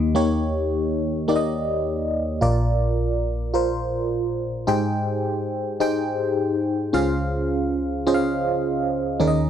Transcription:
Already playing: D#2 D#3 A#3 D#4 G4 D#5
0.15 A#3 D#4 G4 C#5
1.28 A#3 D#4 G4 D5
1.36 D#5
2.41 A#1 A#2 F4 A#4 D5
3.54 F4 A#4 C5
4.67 G#2 D#4 G4 G#4 C5 G5
5.80 D#4 G4 G#4 C5 G5
6.93 C#2 C#3 C#4 F4 G#4 C5 F5
8.07 C#4 F4 G#4 C5 D#5
8.14 F5
9.20 D#2 D#3 C#4 D#4 G#4 A#4 D5
9.28 D#5

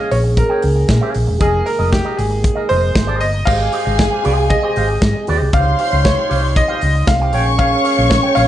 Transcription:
Already playing: C#3 A#3 G#4 D#5
0.00 F5
0.11 A#1 C#5, muted clean electric guitar stroke, open hi-hat
0.24 muted clean electric guitar stroke
0.37 A#4, muted clean electric guitar stroke, kick, closed hi-hat
0.49 G#4 C#5 G5
0.62 C#2, muted clean electric guitar stroke, open hi-hat
0.76 muted clean electric guitar stroke
0.88 A#2, muted clean electric guitar stroke, kick, snare, closed hi-hat
1.01 G#4 C#5 F5
1.14 A#1, muted clean electric guitar stroke, open hi-hat
1.27 E1, muted clean electric guitar stroke
1.39 F1 D#3 G#3 G#4 A#4 D#5, kick, closed hi-hat
1.66 A#4, muted clean electric guitar stroke, open hi-hat
1.79 F1 G#4 A#4 D#5
1.92 G4, muted clean electric guitar stroke, kick, snare, closed hi-hat
2.05 G#4 A#4 D#5
2.17 G#1 G#4, muted clean electric guitar stroke, open hi-hat
2.30 muted clean electric guitar stroke
2.42 muted clean electric guitar stroke, kick, closed hi-hat
2.55 G#4 A#4 D#5
2.69 F1 G#4 A#4 C5 D#5, open hi-hat
2.82 muted clean electric guitar stroke
2.95 G#1, muted clean electric guitar stroke, kick, snare, closed hi-hat
3.07 G#4 A#4 D#5
3.20 G1 D#5, muted clean electric guitar stroke, open hi-hat
3.33 muted clean electric guitar stroke
3.45 G#1 C3 G#3 G4 G#4 C5 D#5 F5 G#5, kick, crash
3.60 muted clean electric guitar stroke
3.72 G4 C5 D#5, open hi-hat
3.85 G#1 G4 C5 D#5
3.98 muted clean electric guitar stroke, kick, snare, closed hi-hat
4.11 G4 C5 F5
4.24 C2 G4 C5 D#5, open hi-hat
4.37 muted clean electric guitar stroke
4.50 D#5, muted clean electric guitar stroke, kick, closed hi-hat
4.62 G4 C5 D#5
4.76 G#1 G4 C5 F5, open hi-hat
4.89 muted clean electric guitar stroke
5.02 G#2, kick, snare, closed hi-hat
5.15 muted clean electric guitar stroke
5.27 D#2 G4 C5 D#5, open hi-hat
5.41 C2, muted clean electric guitar stroke
5.53 C#2 F3 G3 D#4 G4 C5 C#5 F5 C6, kick, closed hi-hat
5.66 muted clean electric guitar stroke
5.79 G4 C5 F5, open hi-hat
5.92 C#2 G4 C5 F5
6.05 C#5, kick, snare, closed hi-hat
6.17 G4 C5 F5
6.29 C2 G4 C5 F5, open hi-hat
6.43 muted clean electric guitar stroke
6.56 D#5, muted clean electric guitar stroke, kick, closed hi-hat
6.68 G4 C5 F5
6.81 C#2, muted clean electric guitar stroke, open hi-hat
6.95 muted clean electric guitar stroke
7.07 C2 F5, muted clean electric guitar stroke, kick, snare, closed hi-hat
7.21 G4 C5 G5
7.33 A#1 A#2 G#3 C#4 G#4 C#5 G5 C#6, open hi-hat
7.46 muted clean electric guitar stroke
7.58 G#4 C#5 F5, kick, closed hi-hat
7.72 muted clean electric guitar stroke
7.84 G#4 C#5 F5, open hi-hat
7.97 A#1 G#4 C#5 F5
8.10 C#5, muted clean electric guitar stroke, kick, snare, closed hi-hat
8.23 G#4 C#5 G5
8.35 A#1 G#4 C#5 F5, open hi-hat

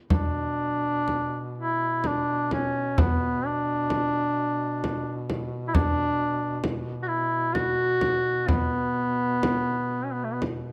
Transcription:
0.10 B2 D4, frame drum
1.08 frame drum
1.58 E4
2.04 D4, frame drum
2.51 C#4, frame drum
2.98 B3, frame drum
3.46 D4
3.90 frame drum
4.84 frame drum
5.30 frame drum
5.68 E4
5.74 D4, frame drum
6.64 frame drum
7.03 F#4
7.08 E4
7.54 F#4, frame drum
8.01 frame drum
8.48 B3, frame drum
9.43 frame drum
10.04 C#4
10.13 B3
10.24 A3
10.33 B3
10.42 frame drum

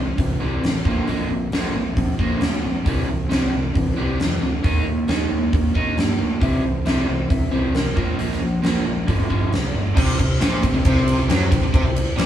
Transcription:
Already playing: C2 C3 E3
0.18 C2 C3 E3, kick, open hi-hat
0.40 C2 C3 E3 G3
0.63 A1 C3 E3, snare, open hi-hat
0.85 A#1 A#2 D3 A#3, kick
1.07 A#1 A#2 D3 A#3, open hi-hat
1.29 A#1 A#2 D3
1.52 A#1 A#2 D3 A#3, snare, open hi-hat
1.75 A#1 A#2 D3
1.97 A#1 A#2 D3, kick, open hi-hat
2.19 A#1 A#2 D3 A#3, kick
2.41 D2 A#2 D3, snare, open hi-hat
2.64 A#1 A#2 D3
2.85 C2 C3 E3 G3, kick, open hi-hat
3.07 C2 C3 E3
3.29 C2 C3 E3 G3, snare, open hi-hat
3.53 C2 C3 E3
3.74 C2 C3 E3, kick, open hi-hat
3.96 C2 C3 E3 G3
4.19 F2 C3 E3, snare, open hi-hat
4.41 D2 C3 E3
4.63 D#2 D#3 A#3 D#4, kick, open hi-hat
4.86 D#2 D#3 A#3
5.08 D#2 D#3 A#3 D#4, snare, open hi-hat
5.30 D#2 D#3 A#3
5.53 D#2 D#3 A#3, kick, open hi-hat
5.75 D#2 D#3 A#3 D#4, kick
5.97 G2 D#3 A#3, snare, open hi-hat
6.19 D2 D#3 A#3
6.41 C2 C3 E3 G3 E5, kick, open hi-hat
6.63 C2 C3 E3 C5
6.85 C2 C3 E3 G3 E5, snare, open hi-hat
7.07 C2 C3 E3 C5
7.30 C2 C3 E3 E5, kick, open hi-hat
7.51 C2 C3 E3 G3 C5
7.74 C2 C3 E3 A#4, snare, open hi-hat
7.96 A#1 A#2 F3 A#3, kick
8.18 A#1 A#2 F3 A#3, open hi-hat
8.32 snare
8.40 A#1 A#2 F3
8.63 A#1 A#2 F3 A#3, snare, open hi-hat
8.85 A#1 A#2 F3
9.07 G1 G2 D3 F3, kick, open hi-hat
9.29 G1 G2 D3 F3, kick
9.52 C2 G2 D3, snare, open hi-hat
9.74 G1 G2 D3
9.95 C2 C3 E4 G4 C5 E5, kick, crash
10.19 C2 C3, kick, ride
10.40 A#1 A#2 E4 G4 C5 E5, snare, ride
10.63 C2 C3, kick, ride
10.74 C2 C3
10.85 C2 C3 E4 G4 C5 E5, kick, ride
11.08 ride
11.18 C2 C3
11.29 F#2 F#3 E4 G4 C5 G5, snare, ride
11.51 C2 C3, kick, ride
11.62 C2 C3
11.73 C2 C3 E4 G4 C5 E5, kick, ride
11.83 C2 C3
11.96 ride
12.16 A#1 A#2 E4 G4 C5 D5, ride
12.20 snare

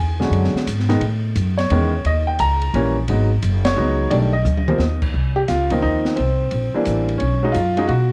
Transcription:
Already playing: E2 G#5
0.20 D3 F#3 G#3 C#4, snare
0.31 F#2, ride
0.44 snare
0.54 muted upright bass stroke, snare
0.66 G#2, hi-hat pedal, ride
0.79 snare
0.89 D#3 G#3 B3 D#4, snare, ride
1.01 A2, ride
1.36 F#2, hi-hat pedal, ride
1.58 C#5, snare, ride
1.70 E2 D#3 G#3 B3 C#4, ride
2.05 D#2 D#5, ride
2.27 G5
2.39 C#2 A#5, hi-hat pedal, ride
2.62 ride
2.74 A#1 E3 G3 A#3 C#4, ride
3.08 G#1 F#3 G#3 B3 D#4, ride
3.42 F#1, hi-hat pedal, ride
3.65 C#5, snare, ride
3.76 C#2 F#3 G#3 B3 D#4
4.10 B1 D#3 G3 A3 D4 D5, ride
4.33 D#5
4.45 D2, hi-hat pedal, high tom
4.57 high tom
4.68 F3 G3 A#3 C4, mid tom
4.78 D#2, snare
5.02 kick, crash
5.14 C2
5.36 G4
5.48 C#2 F4, snare, hi-hat pedal, ride
5.70 D#3 F3 A#3 C4 D#4, kick, ride
5.82 D#2 D#4
6.05 snare
6.16 C2 C4, ride
6.51 A#1, ride
6.74 E3 G3 A#3 D4, muted upright bass stroke
6.85 A1, hi-hat pedal, ride
7.09 ride
7.18 B1 C#4, ride
7.43 F#3 G#3 C#4 D#4
7.52 F#2 F4, hi-hat pedal, ride
7.77 F#3 G#3 C#4 D#4 F4, ride
7.87 B2 F#4, ride

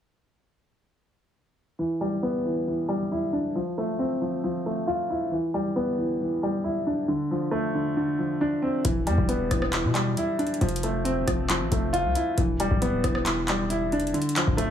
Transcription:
1.79 E3
2.01 G3
2.23 B3
2.45 E3
2.67 E3
2.88 G3
3.12 E4
3.33 D4
3.55 F3
3.78 A3
3.99 C4
4.21 F3
4.44 F3
4.66 A3
4.87 F4
5.10 E4
5.31 E3
5.54 G3
5.76 B3
5.98 E3
6.21 E3
6.43 G3
6.64 E4
6.87 D4
7.08 D3
7.31 F3
7.51 A3
7.74 D3
7.97 D3
8.19 F3
8.41 D4
8.62 C4
8.85 E1 E3, kick, closed hi-hat
9.07 E2 G3, closed hi-hat
9.18 E1, kick
9.29 B3, closed hi-hat
9.51 E1 E3, kick, cross-stick, closed hi-hat
9.62 cross-stick
9.73 E3, clap, closed hi-hat
9.84 B2
9.94 G3, clap, closed hi-hat
10.17 E4, closed hi-hat
10.39 D4, closed hi-hat
10.47 closed hi-hat
10.54 closed hi-hat
10.61 F1 F3, closed hi-hat
10.69 closed hi-hat
10.76 closed hi-hat
10.83 A3, closed hi-hat
11.05 C4, closed hi-hat
11.27 F1 F3, kick, cross-stick, closed hi-hat
11.50 F3, clap, closed hi-hat
11.60 A1
11.72 F1 A3, kick, closed hi-hat
11.93 F4, closed hi-hat
12.05 C2
12.15 E4, closed hi-hat
12.37 E1 E3, kick, closed hi-hat
12.60 G3, closed hi-hat
12.71 D1, kick
12.82 B3, closed hi-hat
13.04 E1 E3, kick, cross-stick, closed hi-hat
13.15 cross-stick
13.26 E3, clap, closed hi-hat
13.48 G3, clap, closed hi-hat
13.70 E4, closed hi-hat
13.92 F1 D4, closed hi-hat
14.00 closed hi-hat
14.07 closed hi-hat
14.14 D3, closed hi-hat
14.22 closed hi-hat
14.29 closed hi-hat
14.36 F3, clap, closed hi-hat
14.47 D1, kick
14.57 A3, closed hi-hat

